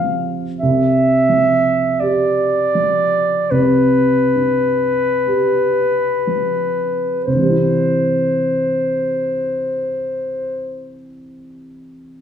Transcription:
0.00 0.62 C3 soft
0.00 0.62 F3 soft
0.00 0.35 F4 soft
0.00 0.28 F5 medium
0.60 3.48 C2 soft
0.60 2.02 E5 medium
1.29 2.44 F3 soft
2.00 3.20 G4 soft
2.00 3.53 D5 medium
2.75 4.00 F3 soft
3.51 7.23 C2 soft
3.51 7.24 B4 soft
4.35 5.85 G2 soft
5.27 6.88 G4 soft
6.27 7.27 F3 soft
7.24 10.95 C2 soft
7.24 10.93 C5 soft
7.32 11.00 G2 soft
7.32 11.04 E3 soft
7.41 11.09 G3 soft
7.46 11.14 C4 soft
7.50 11.18 E4 soft

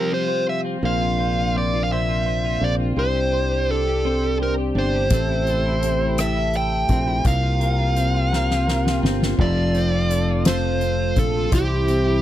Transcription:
0.00 0.78 C3 soft
0.00 3.18 F3 medium
0.00 0.78 G3 soft
0.00 0.64 C4 soft
0.00 0.11 F4 soft
0.00 0.79 F4 soft
0.00 0.44 G4 medium
0.00 0.78 G4 medium
0.00 0.13 A#4 medium
0.00 0.28 C5 soft
0.11 0.46 F4 soft
0.11 0.46 C5 medium
0.28 0.83 C5 soft
0.47 1.01 F4 soft
0.47 0.59 E5 medium
0.65 1.54 C4 soft
0.83 2.57 A#1 medium
0.83 1.90 A#2 medium
0.83 5.07 C3 soft
0.83 2.95 A#3 soft
0.83 5.07 D4 soft
0.83 2.95 F4 medium
0.83 1.19 C5 soft
0.83 1.57 F5 medium
1.01 1.36 F4 soft
1.19 1.92 C5 medium
1.38 1.73 F4 soft
1.55 2.62 C4 soft
1.55 1.84 D5 medium
1.74 2.07 F4 soft
1.84 1.90 F5 medium
1.91 3.05 A#2 medium
1.91 2.26 C5 medium
1.91 2.64 E5 medium
2.09 2.44 F4 soft
2.26 2.98 C5 soft
2.45 2.79 F4 soft
2.61 2.95 A#1 medium
2.61 2.97 C4 soft
2.61 2.73 D5 medium
2.80 3.04 F4 soft
2.96 4.71 C2 medium
2.96 5.09 G3 soft
2.96 4.04 C4 medium
2.96 9.35 G4 medium
2.96 3.32 C5 medium
2.96 3.71 C5 medium
3.15 3.51 G4 soft
3.33 4.05 C5 medium
3.52 3.87 G4 medium
3.69 4.74 D4 soft
3.69 4.37 A4 medium
3.87 4.22 G4 soft
4.05 5.84 C4 medium
4.05 4.39 C5 medium
4.22 4.58 G4 soft
4.40 4.52 A#4 medium
4.40 5.12 C5 soft
4.58 4.93 G4 soft
4.75 5.09 G1 medium
4.75 5.18 D4 medium
4.75 6.24 C5 medium
4.93 5.29 G4 soft
5.10 6.85 A1 medium
5.10 6.18 A2 medium
5.10 7.23 C3 medium
5.10 7.23 A3 soft
5.10 7.23 E4 medium
5.10 5.46 A4 medium
5.10 kick loud
5.10 closed hi-hat medium
5.29 5.65 E4 soft
5.47 6.18 A4 medium
5.47 closed hi-hat soft
5.66 6.00 E4 medium
5.83 6.89 C4 medium
5.83 closed hi-hat medium
6.01 6.35 E4 soft
6.18 7.24 A2 medium
6.18 6.53 A4 medium
6.18 6.56 E5 medium
6.18 cross-stick medium
6.18 closed hi-hat medium
6.36 6.71 E4 soft
6.53 7.25 A4 medium
6.53 7.27 G5 medium
6.53 closed hi-hat soft
6.72 7.06 E4 soft
6.89 7.23 A#1 medium
6.89 7.63 C4 medium
6.89 kick medium
6.89 closed hi-hat soft
7.07 7.32 E4 medium
7.25 8.99 C2 medium
7.25 8.31 C3 medium
7.25 9.37 C3 medium
7.25 9.37 A#3 medium
7.25 9.36 F4 soft
7.25 7.59 A#4 medium
7.25 9.00 F5 medium
7.25 kick loud
7.25 closed hi-hat medium
7.43 7.78 F4 soft
7.60 8.31 A#4 medium
7.60 closed hi-hat soft
7.79 8.14 F4 medium
7.96 9.03 C4 soft
7.96 closed hi-hat medium
8.14 8.49 F4 medium
8.32 9.46 C3 medium
8.32 8.66 A#4 medium
8.32 snare soft
8.49 8.85 F4 medium
8.49 snare soft
8.67 9.39 A#4 medium
8.67 snare medium
8.85 9.20 F4 soft
8.85 snare medium
9.03 9.37 G1 medium
9.03 9.74 C4 medium
9.03 snare medium
9.20 9.56 F4 soft
9.20 snare medium
9.37 11.13 F1 medium
9.37 12.22 C3 medium
9.37 11.50 F3 soft
9.37 10.45 F3 medium
9.37 11.50 A3 medium
9.37 11.50 F4 medium
9.37 10.09 A4 medium
9.37 10.47 D5 loud
9.37 kick loud
9.37 crash medium
9.57 9.91 F4 soft
9.75 10.81 C4 medium
9.75 closed hi-hat soft
9.92 10.27 F4 medium
10.10 10.45 A4 medium
10.10 closed hi-hat medium
10.28 10.62 F4 medium
10.45 11.60 F3 medium
10.45 11.15 A4 medium
10.45 11.20 C5 medium
10.45 snare loud
10.45 closed hi-hat medium
10.63 10.98 F4 medium
10.81 11.88 C4 soft
10.81 closed hi-hat soft
10.99 11.34 F4 medium
11.16 11.50 A#1 medium
11.16 11.52 A4 medium
11.16 11.54 A4 medium
11.16 kick medium
11.16 closed hi-hat medium
11.35 11.60 F4 medium
11.52 12.22 C2 loud
11.52 12.22 C3 medium
11.52 12.22 E3 medium
11.52 12.22 G3 medium
11.52 12.22 E4 medium
11.52 12.22 G4 medium
11.52 12.22 C5 medium
11.52 kick loud
11.52 closed hi-hat medium
11.70 12.04 E4 soft
11.88 12.22 C4 medium
11.88 closed hi-hat soft
12.06 12.22 E4 medium

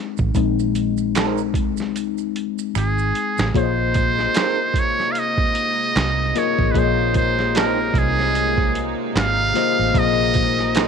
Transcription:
0.17 0.34 A1 medium
0.17 kick medium
0.17 maracas soft
0.35 1.55 A#1 loud
0.35 1.51 G#3 soft
0.35 1.51 C4 soft
0.35 1.51 D#4 medium
0.35 kick loud
0.35 closed hi-hat medium
0.35 maracas medium
0.59 maracas soft
0.75 closed hi-hat medium
0.75 maracas medium
0.97 maracas soft
1.15 1.38 G#3 medium
1.15 1.38 C4 medium
1.15 1.38 D#4 medium
1.15 1.39 A#4 medium
1.15 finger snap medium
1.15 snare loud
1.15 clap medium
1.15 closed hi-hat medium
1.15 maracas medium
1.38 maracas soft
1.54 2.71 C2 medium
1.54 kick medium
1.54 closed hi-hat medium
1.54 maracas soft
1.77 snare soft
1.77 maracas soft
1.96 closed hi-hat medium
1.96 maracas medium
2.18 maracas soft
2.36 closed hi-hat medium
2.59 maracas medium
2.75 3.11 G#1 medium
2.75 3.52 G#4 medium
2.75 finger snap medium
2.75 closed hi-hat medium
2.75 maracas medium
2.98 maracas soft
3.15 closed hi-hat medium
3.38 3.53 A1 medium
3.38 snare medium
3.38 maracas soft
3.54 4.26 A#1 loud
3.54 10.88 C3 medium
3.54 10.88 G#3 medium
3.54 4.87 A#3 medium
3.54 10.88 A#3 medium
3.54 10.88 D#4 medium
3.54 4.87 F4 medium
3.54 4.87 G#4 medium
3.54 4.87 C5 medium
3.54 4.80 C5 loud
3.54 3.63 C#5 medium
3.54 kick loud
3.54 closed hi-hat medium
3.63 4.91 D#5 medium
3.94 kick medium
3.94 closed hi-hat medium
4.19 snare soft
4.34 4.57 G#3 medium
4.34 4.57 C4 medium
4.34 4.57 D#4 medium
4.34 4.58 A#4 medium
4.34 snare loud
4.34 clap medium
4.34 closed hi-hat medium
4.74 kick medium
4.74 closed hi-hat medium
4.79 5.13 C#5 loud
5.00 snare soft
5.12 5.20 F5 medium
5.12 closed hi-hat medium
5.19 6.40 D#5 loud
5.38 kick medium
5.55 closed hi-hat medium
5.96 6.31 C2 medium
5.96 snare loud
5.96 clap medium
5.96 closed hi-hat medium
6.35 6.68 A#3 medium
6.35 6.69 F4 medium
6.35 6.69 G#4 medium
6.35 6.69 A#4 medium
6.35 6.73 C#5 medium
6.35 6.69 D#5 medium
6.35 snare soft
6.35 closed hi-hat medium
6.59 6.74 A1 medium
6.59 kick loud
6.71 7.91 A#1 loud
6.71 6.80 B4 medium
6.71 kick loud
6.75 8.07 A#3 medium
6.75 8.07 F4 medium
6.75 8.08 G#4 medium
6.75 8.08 C5 medium
6.75 7.16 C5 medium
6.75 6.83 C#5 medium
6.75 closed hi-hat medium
6.84 8.11 D#5 medium
7.14 7.58 C5 medium
7.14 kick medium
7.14 closed hi-hat medium
7.39 snare soft
7.55 7.77 G#3 medium
7.55 7.78 C4 medium
7.55 7.78 D#4 medium
7.55 8.00 A#4 medium
7.55 7.78 A#4 loud
7.55 snare loud
7.55 clap medium
7.55 closed hi-hat medium
7.94 8.93 C2 loud
7.94 kick medium
7.94 closed hi-hat medium
7.98 8.91 G#4 loud
8.19 snare soft
8.35 closed hi-hat medium
8.58 kick medium
8.75 closed hi-hat medium
9.15 9.51 G#1 medium
9.15 10.00 F5 loud
9.15 snare loud
9.15 clap medium
9.15 closed hi-hat medium
9.54 9.88 A#3 medium
9.54 9.88 F4 medium
9.54 9.89 G#4 medium
9.54 9.89 C5 medium
9.54 9.89 D#5 medium
9.54 snare soft
9.54 closed hi-hat medium
9.79 9.94 A1 medium
9.94 10.88 A#1 loud
9.94 10.88 A#3 medium
9.94 10.88 F4 medium
9.94 10.88 G#4 medium
9.94 10.88 C5 medium
9.94 10.88 D#5 medium
9.94 10.88 D#5 loud
9.94 kick loud
9.94 closed hi-hat medium
10.34 kick medium
10.34 closed hi-hat medium
10.59 snare soft
10.75 10.88 G#3 medium
10.75 10.88 C4 medium
10.75 10.88 D#4 medium
10.75 10.88 A#4 medium
10.75 snare loud
10.75 clap medium
10.75 closed hi-hat medium

